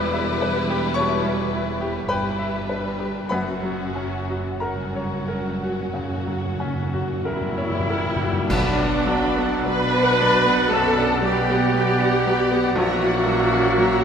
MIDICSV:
0, 0, Header, 1, 14, 480
1, 0, Start_track
1, 0, Key_signature, 2, "minor"
1, 0, Tempo, 1125704
1, 892, Tempo, 1221996
1, 1372, Tempo, 1310044
1, 1373, Time_signature, 4, 2, 24, 8
1, 2812, Tempo, 1255230
1, 3292, Tempo, 1156069
1, 3772, Tempo, 1043478
1, 4732, Tempo, 1008403
1, 5827, End_track
2, 0, Start_track
2, 0, Title_t, "Flute"
2, 0, Program_c, 0, 73
2, 2808, Note_on_c, 0, 76, 65
2, 3299, Note_on_c, 0, 74, 73
2, 3305, Note_off_c, 0, 76, 0
2, 3780, Note_on_c, 0, 83, 99
2, 3787, Note_off_c, 0, 74, 0
2, 4263, Note_on_c, 0, 81, 81
2, 4270, Note_off_c, 0, 83, 0
2, 4507, Note_on_c, 0, 79, 88
2, 4514, Note_off_c, 0, 81, 0
2, 5069, Note_off_c, 0, 79, 0
2, 5221, Note_on_c, 0, 78, 81
2, 5827, Note_off_c, 0, 78, 0
2, 5827, End_track
3, 0, Start_track
3, 0, Title_t, "Violin section"
3, 0, Program_c, 1, 48
3, 0, Note_on_c, 1, 71, 73
3, 877, Note_off_c, 1, 71, 0
3, 889, Note_on_c, 1, 71, 61
3, 1362, Note_off_c, 1, 71, 0
3, 1370, Note_on_c, 1, 66, 54
3, 1845, Note_off_c, 1, 66, 0
3, 1850, Note_on_c, 1, 66, 54
3, 3193, Note_off_c, 1, 66, 0
3, 3294, Note_on_c, 1, 83, 67
3, 3402, Note_off_c, 1, 83, 0
3, 3415, Note_on_c, 1, 78, 58
3, 3535, Note_off_c, 1, 78, 0
3, 3539, Note_on_c, 1, 83, 58
3, 3658, Note_off_c, 1, 83, 0
3, 3667, Note_on_c, 1, 78, 49
3, 3780, Note_off_c, 1, 78, 0
3, 3783, Note_on_c, 1, 83, 61
3, 3895, Note_off_c, 1, 83, 0
3, 3910, Note_on_c, 1, 78, 58
3, 4026, Note_off_c, 1, 78, 0
3, 4029, Note_on_c, 1, 83, 56
3, 4144, Note_off_c, 1, 83, 0
3, 4147, Note_on_c, 1, 78, 58
3, 4263, Note_off_c, 1, 78, 0
3, 4266, Note_on_c, 1, 83, 65
3, 4374, Note_off_c, 1, 83, 0
3, 4386, Note_on_c, 1, 78, 56
3, 4501, Note_off_c, 1, 78, 0
3, 4507, Note_on_c, 1, 83, 62
3, 4620, Note_off_c, 1, 83, 0
3, 4623, Note_on_c, 1, 78, 57
3, 4736, Note_on_c, 1, 83, 53
3, 4737, Note_off_c, 1, 78, 0
3, 4848, Note_off_c, 1, 83, 0
3, 4856, Note_on_c, 1, 78, 55
3, 4977, Note_off_c, 1, 78, 0
3, 4979, Note_on_c, 1, 83, 60
3, 5100, Note_off_c, 1, 83, 0
3, 5102, Note_on_c, 1, 78, 61
3, 5221, Note_off_c, 1, 78, 0
3, 5221, Note_on_c, 1, 82, 64
3, 5332, Note_off_c, 1, 82, 0
3, 5347, Note_on_c, 1, 78, 57
3, 5463, Note_off_c, 1, 78, 0
3, 5464, Note_on_c, 1, 82, 58
3, 5580, Note_off_c, 1, 82, 0
3, 5584, Note_on_c, 1, 78, 50
3, 5696, Note_on_c, 1, 82, 59
3, 5699, Note_off_c, 1, 78, 0
3, 5805, Note_off_c, 1, 82, 0
3, 5827, End_track
4, 0, Start_track
4, 0, Title_t, "Oboe"
4, 0, Program_c, 2, 68
4, 3292, Note_on_c, 2, 78, 82
4, 5200, Note_off_c, 2, 78, 0
4, 5216, Note_on_c, 2, 76, 74
4, 5827, Note_off_c, 2, 76, 0
4, 5827, End_track
5, 0, Start_track
5, 0, Title_t, "Clarinet"
5, 0, Program_c, 3, 71
5, 3298, Note_on_c, 3, 74, 78
5, 5698, Note_on_c, 3, 73, 83
5, 5706, Note_off_c, 3, 74, 0
5, 5827, Note_off_c, 3, 73, 0
5, 5827, End_track
6, 0, Start_track
6, 0, Title_t, "Violin section"
6, 0, Program_c, 4, 48
6, 0, Note_on_c, 4, 64, 80
6, 876, Note_off_c, 4, 64, 0
6, 889, Note_on_c, 4, 64, 63
6, 1121, Note_off_c, 4, 64, 0
6, 1129, Note_on_c, 4, 62, 53
6, 1369, Note_on_c, 4, 61, 60
6, 1374, Note_off_c, 4, 62, 0
6, 1846, Note_off_c, 4, 61, 0
6, 1850, Note_on_c, 4, 61, 59
6, 3193, Note_off_c, 4, 61, 0
6, 3288, Note_on_c, 4, 74, 63
6, 3290, Note_on_c, 4, 71, 64
6, 3399, Note_off_c, 4, 74, 0
6, 3400, Note_off_c, 4, 71, 0
6, 3412, Note_on_c, 4, 71, 55
6, 3412, Note_on_c, 4, 74, 61
6, 3527, Note_off_c, 4, 74, 0
6, 3528, Note_off_c, 4, 71, 0
6, 3532, Note_on_c, 4, 74, 59
6, 3533, Note_on_c, 4, 71, 57
6, 3651, Note_off_c, 4, 71, 0
6, 3652, Note_off_c, 4, 74, 0
6, 3656, Note_on_c, 4, 71, 55
6, 3657, Note_on_c, 4, 74, 57
6, 3765, Note_off_c, 4, 71, 0
6, 3767, Note_off_c, 4, 74, 0
6, 3770, Note_on_c, 4, 71, 57
6, 3772, Note_on_c, 4, 74, 56
6, 3888, Note_off_c, 4, 71, 0
6, 3889, Note_off_c, 4, 74, 0
6, 3897, Note_on_c, 4, 71, 54
6, 3898, Note_on_c, 4, 74, 52
6, 4014, Note_off_c, 4, 71, 0
6, 4016, Note_off_c, 4, 74, 0
6, 4019, Note_on_c, 4, 71, 63
6, 4021, Note_on_c, 4, 74, 58
6, 4133, Note_off_c, 4, 74, 0
6, 4134, Note_off_c, 4, 71, 0
6, 4139, Note_on_c, 4, 74, 58
6, 4140, Note_on_c, 4, 71, 55
6, 4254, Note_off_c, 4, 71, 0
6, 4254, Note_off_c, 4, 74, 0
6, 4260, Note_on_c, 4, 71, 62
6, 4260, Note_on_c, 4, 74, 63
6, 4370, Note_off_c, 4, 71, 0
6, 4370, Note_off_c, 4, 74, 0
6, 4380, Note_on_c, 4, 71, 55
6, 4381, Note_on_c, 4, 74, 55
6, 4491, Note_off_c, 4, 74, 0
6, 4492, Note_off_c, 4, 71, 0
6, 4497, Note_on_c, 4, 74, 57
6, 4498, Note_on_c, 4, 71, 59
6, 4612, Note_off_c, 4, 71, 0
6, 4613, Note_off_c, 4, 74, 0
6, 4618, Note_on_c, 4, 71, 55
6, 4619, Note_on_c, 4, 74, 55
6, 4728, Note_off_c, 4, 71, 0
6, 4728, Note_off_c, 4, 74, 0
6, 4733, Note_on_c, 4, 74, 60
6, 4734, Note_on_c, 4, 71, 54
6, 4846, Note_off_c, 4, 74, 0
6, 4847, Note_off_c, 4, 71, 0
6, 4856, Note_on_c, 4, 71, 57
6, 4859, Note_on_c, 4, 74, 58
6, 4971, Note_off_c, 4, 71, 0
6, 4971, Note_off_c, 4, 74, 0
6, 4976, Note_on_c, 4, 74, 60
6, 4977, Note_on_c, 4, 71, 59
6, 5092, Note_off_c, 4, 74, 0
6, 5093, Note_off_c, 4, 71, 0
6, 5098, Note_on_c, 4, 74, 57
6, 5099, Note_on_c, 4, 71, 58
6, 5219, Note_off_c, 4, 74, 0
6, 5220, Note_off_c, 4, 71, 0
6, 5221, Note_on_c, 4, 76, 61
6, 5222, Note_on_c, 4, 70, 66
6, 5332, Note_off_c, 4, 76, 0
6, 5333, Note_off_c, 4, 70, 0
6, 5339, Note_on_c, 4, 73, 58
6, 5339, Note_on_c, 4, 78, 58
6, 5456, Note_on_c, 4, 70, 53
6, 5457, Note_on_c, 4, 76, 55
6, 5459, Note_off_c, 4, 73, 0
6, 5459, Note_off_c, 4, 78, 0
6, 5577, Note_off_c, 4, 70, 0
6, 5577, Note_off_c, 4, 76, 0
6, 5579, Note_on_c, 4, 73, 58
6, 5579, Note_on_c, 4, 78, 57
6, 5694, Note_on_c, 4, 70, 58
6, 5697, Note_off_c, 4, 73, 0
6, 5697, Note_off_c, 4, 78, 0
6, 5697, Note_on_c, 4, 76, 57
6, 5804, Note_off_c, 4, 70, 0
6, 5806, Note_off_c, 4, 76, 0
6, 5827, End_track
7, 0, Start_track
7, 0, Title_t, "Grand piano"
7, 0, Program_c, 5, 0
7, 0, Control_c, 5, 64, 127
7, 0, Note_on_c, 5, 40, 82
7, 0, Note_on_c, 5, 55, 59
7, 0, Note_on_c, 5, 64, 60
7, 0, Note_on_c, 5, 67, 58
7, 0, Note_on_c, 5, 71, 65
7, 0, Note_on_c, 5, 74, 69
7, 0, Note_on_c, 5, 76, 75
7, 0, Note_on_c, 5, 83, 77
7, 0, Note_on_c, 5, 86, 93
7, 0, Note_on_c, 5, 88, 94
7, 57, Note_off_c, 5, 76, 0
7, 57, Note_on_c, 5, 76, 62
7, 125, Note_off_c, 5, 71, 0
7, 180, Note_on_c, 5, 71, 60
7, 246, Note_off_c, 5, 76, 0
7, 298, Note_off_c, 5, 67, 0
7, 298, Note_on_c, 5, 67, 62
7, 367, Note_off_c, 5, 71, 0
7, 390, Note_off_c, 5, 86, 0
7, 393, Note_off_c, 5, 74, 0
7, 397, Note_off_c, 5, 40, 0
7, 402, Note_on_c, 5, 85, 99
7, 408, Note_on_c, 5, 73, 68
7, 414, Note_on_c, 5, 47, 57
7, 485, Note_off_c, 5, 67, 0
7, 535, Note_off_c, 5, 55, 0
7, 535, Note_on_c, 5, 55, 51
7, 603, Note_off_c, 5, 47, 0
7, 653, Note_off_c, 5, 64, 0
7, 653, Note_on_c, 5, 64, 63
7, 724, Note_off_c, 5, 55, 0
7, 771, Note_on_c, 5, 67, 56
7, 845, Note_off_c, 5, 64, 0
7, 871, Note_off_c, 5, 85, 0
7, 874, Note_off_c, 5, 73, 0
7, 889, Note_off_c, 5, 83, 0
7, 889, Note_on_c, 5, 83, 85
7, 890, Note_on_c, 5, 71, 64
7, 893, Note_on_c, 5, 79, 60
7, 962, Note_off_c, 5, 67, 0
7, 1008, Note_on_c, 5, 76, 54
7, 1078, Note_off_c, 5, 71, 0
7, 1128, Note_on_c, 5, 71, 47
7, 1199, Note_off_c, 5, 76, 0
7, 1247, Note_on_c, 5, 67, 49
7, 1324, Note_off_c, 5, 71, 0
7, 1355, Note_off_c, 5, 83, 0
7, 1358, Note_off_c, 5, 79, 0
7, 1363, Note_on_c, 5, 83, 75
7, 1368, Note_on_c, 5, 78, 59
7, 1370, Note_on_c, 5, 71, 55
7, 1372, Note_off_c, 5, 67, 0
7, 1373, Note_on_c, 5, 42, 63
7, 1382, Control_c, 5, 64, 0
7, 1383, Note_off_c, 5, 88, 0
7, 1443, Control_c, 5, 64, 127
7, 1488, Note_on_c, 5, 54, 48
7, 1607, Note_on_c, 5, 61, 48
7, 1678, Note_off_c, 5, 54, 0
7, 1730, Note_on_c, 5, 66, 46
7, 1799, Note_off_c, 5, 61, 0
7, 1830, Note_off_c, 5, 83, 0
7, 1832, Note_off_c, 5, 78, 0
7, 1833, Note_off_c, 5, 71, 0
7, 1844, Note_on_c, 5, 82, 53
7, 1848, Note_on_c, 5, 70, 43
7, 1851, Note_on_c, 5, 78, 36
7, 1924, Note_off_c, 5, 66, 0
7, 1973, Note_on_c, 5, 73, 49
7, 2045, Note_off_c, 5, 70, 0
7, 2093, Note_on_c, 5, 70, 43
7, 2168, Note_off_c, 5, 73, 0
7, 2219, Note_on_c, 5, 66, 49
7, 2288, Note_off_c, 5, 70, 0
7, 2322, Note_off_c, 5, 42, 0
7, 2332, Note_on_c, 5, 49, 42
7, 2410, Note_off_c, 5, 66, 0
7, 2455, Note_on_c, 5, 54, 40
7, 2526, Note_off_c, 5, 49, 0
7, 2576, Note_on_c, 5, 61, 51
7, 2646, Note_off_c, 5, 54, 0
7, 2698, Note_on_c, 5, 66, 52
7, 2765, Note_off_c, 5, 61, 0
7, 2796, Note_off_c, 5, 82, 0
7, 2799, Note_off_c, 5, 78, 0
7, 2815, Note_on_c, 5, 70, 55
7, 2889, Note_off_c, 5, 66, 0
7, 2938, Note_on_c, 5, 73, 53
7, 3013, Note_off_c, 5, 70, 0
7, 3062, Note_on_c, 5, 70, 51
7, 3136, Note_off_c, 5, 73, 0
7, 3182, Note_on_c, 5, 66, 50
7, 3249, Note_off_c, 5, 70, 0
7, 3292, Note_off_c, 5, 66, 0
7, 3292, Note_on_c, 5, 35, 81
7, 3301, Control_c, 5, 64, 0
7, 3382, Control_c, 5, 64, 127
7, 3409, Note_on_c, 5, 62, 67
7, 3528, Note_on_c, 5, 54, 68
7, 3606, Note_off_c, 5, 62, 0
7, 3655, Note_on_c, 5, 59, 60
7, 3724, Note_off_c, 5, 54, 0
7, 3778, Note_on_c, 5, 54, 58
7, 3849, Note_off_c, 5, 59, 0
7, 3904, Note_on_c, 5, 62, 55
7, 3974, Note_off_c, 5, 54, 0
7, 4028, Note_on_c, 5, 54, 55
7, 4094, Note_off_c, 5, 62, 0
7, 4142, Note_on_c, 5, 59, 54
7, 4215, Note_off_c, 5, 54, 0
7, 4240, Note_off_c, 5, 35, 0
7, 4255, Note_on_c, 5, 42, 57
7, 4332, Note_off_c, 5, 59, 0
7, 4376, Note_on_c, 5, 62, 57
7, 4448, Note_off_c, 5, 42, 0
7, 4492, Note_on_c, 5, 54, 61
7, 4567, Note_off_c, 5, 62, 0
7, 4618, Note_on_c, 5, 59, 62
7, 4684, Note_off_c, 5, 54, 0
7, 4728, Note_on_c, 5, 54, 57
7, 4807, Note_off_c, 5, 59, 0
7, 4853, Note_on_c, 5, 62, 61
7, 4925, Note_off_c, 5, 54, 0
7, 4981, Note_on_c, 5, 54, 51
7, 5049, Note_off_c, 5, 62, 0
7, 5099, Note_on_c, 5, 59, 61
7, 5173, Note_off_c, 5, 54, 0
7, 5214, Note_on_c, 5, 34, 85
7, 5220, Note_off_c, 5, 59, 0
7, 5228, Control_c, 5, 64, 0
7, 5302, Control_c, 5, 64, 127
7, 5339, Note_on_c, 5, 64, 57
7, 5455, Note_on_c, 5, 54, 57
7, 5530, Note_off_c, 5, 64, 0
7, 5582, Note_on_c, 5, 61, 49
7, 5647, Note_off_c, 5, 54, 0
7, 5699, Note_on_c, 5, 54, 61
7, 5769, Note_off_c, 5, 61, 0
7, 5827, Note_off_c, 5, 34, 0
7, 5827, Note_off_c, 5, 54, 0
7, 5827, End_track
8, 0, Start_track
8, 0, Title_t, "Viola section"
8, 0, Program_c, 6, 48
8, 0, Note_on_c, 6, 55, 79
8, 875, Note_off_c, 6, 55, 0
8, 892, Note_on_c, 6, 55, 67
8, 1363, Note_off_c, 6, 55, 0
8, 1373, Note_on_c, 6, 54, 56
8, 1844, Note_off_c, 6, 54, 0
8, 1848, Note_on_c, 6, 54, 52
8, 2798, Note_off_c, 6, 54, 0
8, 2816, Note_on_c, 6, 64, 86
8, 3279, Note_off_c, 6, 64, 0
8, 3294, Note_on_c, 6, 62, 84
8, 3773, Note_on_c, 6, 71, 115
8, 3774, Note_off_c, 6, 62, 0
8, 4249, Note_off_c, 6, 71, 0
8, 4257, Note_on_c, 6, 69, 98
8, 4496, Note_off_c, 6, 69, 0
8, 4500, Note_on_c, 6, 67, 96
8, 5206, Note_off_c, 6, 67, 0
8, 5221, Note_on_c, 6, 66, 106
8, 5827, Note_off_c, 6, 66, 0
8, 5827, End_track
9, 0, Start_track
9, 0, Title_t, "Trumpet"
9, 0, Program_c, 7, 56
9, 2814, Note_on_c, 7, 55, 76
9, 3294, Note_on_c, 7, 54, 79
9, 3301, Note_off_c, 7, 55, 0
9, 3775, Note_on_c, 7, 62, 93
9, 3782, Note_off_c, 7, 54, 0
9, 4263, Note_on_c, 7, 61, 81
9, 4269, Note_off_c, 7, 62, 0
9, 4495, Note_off_c, 7, 61, 0
9, 4498, Note_on_c, 7, 59, 77
9, 5205, Note_off_c, 7, 59, 0
9, 5218, Note_on_c, 7, 58, 98
9, 5827, Note_off_c, 7, 58, 0
9, 5827, End_track
10, 0, Start_track
10, 0, Title_t, "French horn section"
10, 0, Program_c, 8, 60
10, 3288, Note_on_c, 8, 54, 68
10, 3290, Note_on_c, 8, 59, 69
10, 3754, Note_off_c, 8, 54, 0
10, 3755, Note_off_c, 8, 59, 0
10, 3781, Note_on_c, 8, 59, 69
10, 3782, Note_on_c, 8, 54, 64
10, 5205, Note_off_c, 8, 54, 0
10, 5205, Note_off_c, 8, 59, 0
10, 5226, Note_on_c, 8, 61, 68
10, 5228, Note_on_c, 8, 52, 66
10, 5827, Note_off_c, 8, 52, 0
10, 5827, Note_off_c, 8, 61, 0
10, 5827, End_track
11, 0, Start_track
11, 0, Title_t, "Cello section"
11, 0, Program_c, 10, 48
11, 0, Note_on_c, 10, 40, 75
11, 875, Note_off_c, 10, 40, 0
11, 896, Note_on_c, 10, 43, 58
11, 1373, Note_on_c, 10, 42, 52
11, 1374, Note_off_c, 10, 43, 0
11, 1792, Note_off_c, 10, 42, 0
11, 1848, Note_on_c, 10, 43, 62
11, 2321, Note_off_c, 10, 43, 0
11, 2337, Note_on_c, 10, 42, 57
11, 2812, Note_on_c, 10, 40, 54
11, 2813, Note_off_c, 10, 42, 0
11, 3292, Note_off_c, 10, 40, 0
11, 3295, Note_on_c, 10, 47, 80
11, 5202, Note_off_c, 10, 47, 0
11, 5219, Note_on_c, 10, 46, 70
11, 5827, Note_off_c, 10, 46, 0
11, 5827, End_track
12, 0, Start_track
12, 0, Title_t, "Timpani"
12, 0, Program_c, 11, 47
12, 1372, Note_on_c, 11, 42, 33
12, 1403, Note_off_c, 11, 42, 0
12, 1407, Note_on_c, 11, 42, 34
12, 1438, Note_off_c, 11, 42, 0
12, 1476, Note_on_c, 11, 42, 35
12, 1506, Note_off_c, 11, 42, 0
12, 1510, Note_on_c, 11, 42, 35
12, 1538, Note_off_c, 11, 42, 0
12, 1543, Note_on_c, 11, 42, 36
12, 1574, Note_off_c, 11, 42, 0
12, 1578, Note_on_c, 11, 42, 38
12, 1607, Note_off_c, 11, 42, 0
12, 1612, Note_on_c, 11, 42, 37
12, 1643, Note_off_c, 11, 42, 0
12, 1647, Note_on_c, 11, 42, 36
12, 1679, Note_off_c, 11, 42, 0
12, 1684, Note_on_c, 11, 42, 34
12, 1715, Note_off_c, 11, 42, 0
12, 1719, Note_on_c, 11, 42, 34
12, 1750, Note_off_c, 11, 42, 0
12, 1754, Note_on_c, 11, 42, 43
12, 1783, Note_off_c, 11, 42, 0
12, 1787, Note_on_c, 11, 42, 40
12, 1819, Note_off_c, 11, 42, 0
12, 1823, Note_on_c, 11, 42, 43
12, 1852, Note_off_c, 11, 42, 0
12, 1857, Note_on_c, 11, 42, 43
12, 1890, Note_off_c, 11, 42, 0
12, 1894, Note_on_c, 11, 42, 43
12, 1925, Note_off_c, 11, 42, 0
12, 1929, Note_on_c, 11, 42, 42
12, 1956, Note_off_c, 11, 42, 0
12, 1961, Note_on_c, 11, 42, 46
12, 1994, Note_off_c, 11, 42, 0
12, 1998, Note_on_c, 11, 42, 42
12, 2028, Note_off_c, 11, 42, 0
12, 2032, Note_on_c, 11, 42, 49
12, 2065, Note_off_c, 11, 42, 0
12, 2069, Note_on_c, 11, 42, 42
12, 2101, Note_off_c, 11, 42, 0
12, 2106, Note_on_c, 11, 42, 45
12, 2135, Note_off_c, 11, 42, 0
12, 2139, Note_on_c, 11, 42, 45
12, 2173, Note_off_c, 11, 42, 0
12, 2178, Note_on_c, 11, 42, 48
12, 2207, Note_off_c, 11, 42, 0
12, 2212, Note_on_c, 11, 42, 52
12, 2242, Note_off_c, 11, 42, 0
12, 2247, Note_on_c, 11, 42, 46
12, 2279, Note_off_c, 11, 42, 0
12, 2283, Note_on_c, 11, 42, 54
12, 2311, Note_off_c, 11, 42, 0
12, 2316, Note_on_c, 11, 42, 52
12, 2348, Note_off_c, 11, 42, 0
12, 2352, Note_on_c, 11, 42, 55
12, 2382, Note_off_c, 11, 42, 0
12, 2387, Note_on_c, 11, 42, 60
12, 2419, Note_off_c, 11, 42, 0
12, 2423, Note_on_c, 11, 42, 60
12, 2452, Note_off_c, 11, 42, 0
12, 2456, Note_on_c, 11, 42, 57
12, 2487, Note_off_c, 11, 42, 0
12, 2491, Note_on_c, 11, 42, 59
12, 2521, Note_off_c, 11, 42, 0
12, 2525, Note_on_c, 11, 42, 68
12, 2555, Note_off_c, 11, 42, 0
12, 2559, Note_on_c, 11, 42, 64
12, 2591, Note_off_c, 11, 42, 0
12, 2596, Note_on_c, 11, 42, 64
12, 2627, Note_off_c, 11, 42, 0
12, 2633, Note_on_c, 11, 42, 68
12, 2659, Note_off_c, 11, 42, 0
12, 2664, Note_on_c, 11, 42, 71
12, 2695, Note_off_c, 11, 42, 0
12, 2700, Note_on_c, 11, 42, 68
12, 2729, Note_off_c, 11, 42, 0
12, 2733, Note_on_c, 11, 42, 61
12, 2762, Note_off_c, 11, 42, 0
12, 2767, Note_on_c, 11, 42, 68
12, 2795, Note_off_c, 11, 42, 0
12, 2800, Note_on_c, 11, 42, 71
12, 2832, Note_off_c, 11, 42, 0
12, 2837, Note_on_c, 11, 42, 74
12, 2870, Note_off_c, 11, 42, 0
12, 2875, Note_on_c, 11, 42, 76
12, 2905, Note_off_c, 11, 42, 0
12, 2910, Note_on_c, 11, 42, 80
12, 2942, Note_off_c, 11, 42, 0
12, 2948, Note_on_c, 11, 42, 83
12, 2980, Note_off_c, 11, 42, 0
12, 2984, Note_on_c, 11, 42, 76
12, 3016, Note_off_c, 11, 42, 0
12, 3022, Note_on_c, 11, 42, 85
12, 3049, Note_off_c, 11, 42, 0
12, 3053, Note_on_c, 11, 42, 86
12, 3084, Note_off_c, 11, 42, 0
12, 3089, Note_on_c, 11, 42, 81
12, 3119, Note_off_c, 11, 42, 0
12, 3123, Note_on_c, 11, 42, 89
12, 3155, Note_off_c, 11, 42, 0
12, 3161, Note_on_c, 11, 42, 94
12, 3188, Note_off_c, 11, 42, 0
12, 3193, Note_on_c, 11, 42, 92
12, 3221, Note_off_c, 11, 42, 0
12, 3226, Note_on_c, 11, 42, 92
12, 3252, Note_off_c, 11, 42, 0
12, 3256, Note_on_c, 11, 42, 86
12, 3285, Note_off_c, 11, 42, 0
12, 3294, Note_on_c, 11, 47, 96
12, 4002, Note_off_c, 11, 47, 0
12, 5827, End_track
13, 0, Start_track
13, 0, Title_t, "Double bass section"
13, 0, Program_c, 12, 48
13, 0, Note_on_c, 12, 28, 86
13, 875, Note_off_c, 12, 28, 0
13, 891, Note_on_c, 12, 31, 62
13, 1372, Note_off_c, 12, 31, 0
13, 1372, Note_on_c, 12, 30, 56
13, 3192, Note_off_c, 12, 30, 0
13, 3293, Note_on_c, 12, 35, 74
13, 5201, Note_off_c, 12, 35, 0
13, 5220, Note_on_c, 12, 34, 68
13, 5827, Note_off_c, 12, 34, 0
13, 5827, End_track
14, 0, Start_track
14, 0, Title_t, "Drums"
14, 3292, Note_on_c, 9, 35, 88
14, 3292, Note_on_c, 9, 49, 79
14, 3334, Note_off_c, 9, 35, 0
14, 3334, Note_off_c, 9, 49, 0
14, 5827, End_track
0, 0, End_of_file